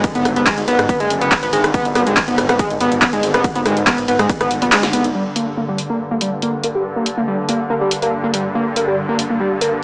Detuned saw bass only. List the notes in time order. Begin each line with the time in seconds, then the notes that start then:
0.15 G#1
0.25 G#1
0.36 G#1
0.58 G#1
0.68 G#1
0.79 G#2
1.00 F#1
1.10 F#1
1.21 F#1
1.43 G#1
1.53 G#1
1.64 G#1
1.85 G#1
1.95 G#1
2.07 G#1
2.28 G#1
2.38 G#1
2.49 G#1
2.70 G#1
2.80 G#1
2.92 G#1
3.13 G#1
3.23 G#1
3.34 G#1
3.55 G#1
3.66 G#1
3.77 G#1
3.98 G#1
4.08 G#1
4.19 G#2
4.41 G#1
4.51 G#1
4.62 A#1
4.83 G#1
4.93 G#1
5.04 G#1